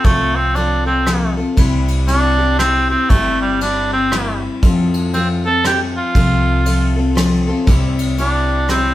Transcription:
0.04 C2 F3 A3 C4 F4 A4, kick, ride
0.35 C4
0.55 F3 C4 D4 F4 A4, ride
0.86 C4 F4 A4
1.06 F3 C4 F4 A4, cross-stick, ride
1.37 C4 F4 A4
1.57 C2 C3 G3 C4 E4 G4, kick, ride
1.88 ride
2.06 G3 C4 D4 E4 G4, ride
2.38 C4 E4 G4
2.58 G3 C4 E4, cross-stick, ride
2.62 G4
2.89 C4 E4 G4
3.09 G1 C3 G3 A3 C4 E4 G4, kick, ride
3.41 G3
3.61 G3 C4 D4 E4 G4, ride
3.92 C4 E4 G4
4.12 G3 C4 E4 G4, cross-stick, ride
4.63 F2 F3 C4 F4 A4, kick, ride
4.94 ride
5.14 F3 C4 F4 A4, ride
5.45 C4 F4 A4
5.64 F3 C4 F4 G4 A4, cross-stick, ride
5.97 F4
6.15 C2 F3 C4 F4 A4, kick, ride
6.65 F3 C4 F4 A4, ride
6.96 C4 F4 A4
7.15 F3 C4 F4 A4, cross-stick, ride
7.47 C4 F4 A4
7.67 C2 C3 G3 C4 E4 G4, kick, ride
7.99 ride
8.17 G3 C4 D4 E4 G4, ride
8.68 G3 C4 E4 G4, cross-stick, ride

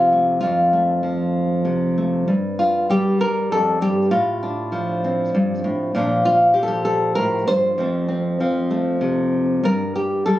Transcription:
Already playing: F2 C3 F3 A3 F4
0.12 A3
0.41 F2 F4
0.73 A3
1.03 F3
1.65 C3
1.98 A3
2.28 G2
2.59 F4
2.90 G3 G4
3.21 A#4
3.52 F2 A4
3.81 G2 G4
4.11 A2 F4
4.43 D4
4.72 F3 D4
5.04 C4
5.35 G2
5.64 A2
5.95 A#2 F3 D4 F4
6.25 F4
6.54 F3 G4
6.63 A4
6.68 G4
6.85 A4
7.15 A2 A#4
7.47 G2 C5
7.78 F2 F3 A3 C4
8.08 C4
8.40 F3 C4
8.71 A3
9.01 C3
9.63 G2 A#4
9.96 G4
10.26 G3 A4

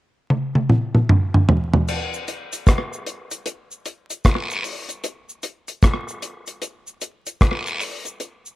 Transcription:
0.30 high tom
0.55 high tom
0.69 mid tom
0.95 mid tom
1.09 mid tom
1.34 mid tom
1.49 floor tom
1.74 floor tom
1.88 crash, cabasa
2.14 cabasa
2.28 closed hi-hat, cabasa
2.53 closed hi-hat, cabasa
2.67 kick, cross-stick, closed hi-hat, cabasa
2.93 cabasa
3.06 closed hi-hat, cabasa
3.31 closed hi-hat, cabasa
3.46 closed hi-hat, cabasa
3.71 cabasa
3.86 closed hi-hat, cabasa
4.10 closed hi-hat, cabasa
4.25 kick, cross-stick, closed hi-hat, cabasa, long guiro
4.50 cabasa
4.64 open hi-hat, cabasa
4.89 closed hi-hat, cabasa
5.04 closed hi-hat, cabasa
5.29 cabasa
5.43 closed hi-hat, cabasa
5.68 closed hi-hat, cabasa
5.82 kick, cross-stick, closed hi-hat, cabasa
6.08 cabasa
6.22 closed hi-hat, cabasa
6.47 closed hi-hat, cabasa
6.62 closed hi-hat, cabasa
6.87 cabasa
7.01 closed hi-hat, cabasa
7.26 closed hi-hat, cabasa
7.41 kick, cross-stick, closed hi-hat, cabasa, long guiro
7.66 cabasa
7.80 open hi-hat, cabasa
8.05 closed hi-hat, cabasa
8.20 closed hi-hat, cabasa
8.46 cabasa

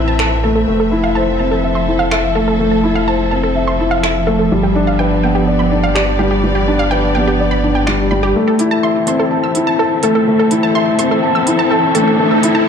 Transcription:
Already playing: A1 E3 A3 C4 E4 B4 E5 A5
0.08 A5
0.19 A4 A5, finger snap
0.44 A3 A4
0.56 A4
0.67 F1 F3 A3
0.80 A4
0.86 A4
0.92 E4
1.04 F5
1.15 C5 A5
1.39 C4 A5
1.51 A4
1.63 E5
1.75 C6
1.87 E4
1.99 F5
2.11 A4 E5, finger snap
2.35 A3 A4
2.48 A4
2.59 A3
2.71 A4
2.84 E4
2.95 F5
3.08 C5 A5
3.31 C4 A5
3.43 A4
3.56 E5
3.68 C6
3.79 E4
3.91 F5
4.03 A4 E5, finger snap
4.27 A3 A4
4.39 A4
4.52 G1 G3
4.63 B3 G4
4.75 D4
4.87 F5
4.99 B4 D5 G5
5.23 B3 G5
5.34 G4
5.48 D5
5.59 B5
5.72 D4
5.83 F5
5.95 G4 D5, finger snap
6.19 G3 G4
6.31 G4
6.44 G3
6.55 G4
6.68 D4
6.79 F5
6.91 B4 G5
7.15 B3 G5
7.28 G4
7.40 D5
7.51 B5
7.64 D4
7.75 G5
7.87 G3 D5, finger snap
8.11 G3 B5
8.23 G4
8.35 E3 A3, riser
8.48 A4
8.59 E4, closed hi-hat
8.71 A5
8.78 C4
8.83 E5 C6
8.94 A4
9.07 C4 C6, closed hi-hat
9.12 E5
9.20 A4
9.31 A5
9.44 E6
9.55 E4, closed hi-hat
9.67 A5
9.79 A4 A5
10.03 A3 A4, closed hi-hat
10.15 A4
10.28 A3
10.39 A4
10.51 E4, closed hi-hat
10.63 A5
10.75 E5 C6
10.99 C4 C6, closed hi-hat
11.11 A4
11.23 A5
11.35 E6
11.47 E4, closed hi-hat
11.59 A5
11.71 A4 A5
11.95 A3 A4, closed hi-hat
12.08 A4
12.19 A3
12.31 A4
12.43 E4, closed hi-hat
12.55 A5

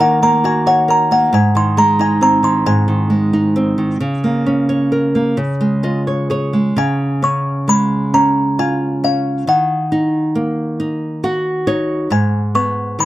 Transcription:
Already playing: A#3 A#4 C#5
0.00 D#3 F#5
0.22 A#3 A#5
0.44 F#4 G#5
0.67 C#5 F#5
0.88 A#4 A#5
1.11 A#3 F#5
1.33 G#2 G#5
1.55 D#3 C6
1.77 G#3 A#5
1.99 D#4 G#5
2.21 C4 A#5
2.43 D#3 C6
2.66 G#2 G#5
2.88 D#3
3.10 G#3
3.33 D#4
3.56 C4
3.78 D#3
4.00 C#3
4.24 A#3
4.46 C#4
4.69 C#5
4.92 A#4
5.15 A#3
5.37 C#3
5.61 G#3
5.83 F4 D#5
6.07 C#5
6.30 G#4 C#5
6.53 G#3
6.76 C#3 G#5
7.22 C#4 C#6
7.68 G#3 B5
8.14 C#4 A#5
8.59 F4 G#5
9.04 C#4 F5
9.47 D#3 F#5
9.92 D#4
10.35 A#3
10.80 D#4
11.24 F#4 F#5
11.67 D#4 C#5
12.10 G#2 G#5
12.55 B3 C#6
12.99 D#3 B5

